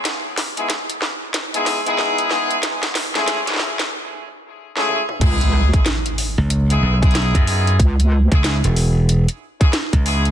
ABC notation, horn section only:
X:1
M:4/4
L:1/16
Q:"Swing 16ths" 1/4=93
K:C#m
V:1 name="Horn section"
z3 [G,B,DEG] z4 z [G,B,DEG]2 [G,B,DEG]3 [G,B,DEG]2 | z3 [G,A,CEG]2 z8 [G,A,CEG]2 z | [G,B,DEG]3 [G,B,DEG] z4 z [G,B,DEG]2 [G,B,DEG]3 [G,B,DEG]2 | z3 [G,B,CEG]2 z6 [G,B,CEG] z2 [G,B,CEG] z |]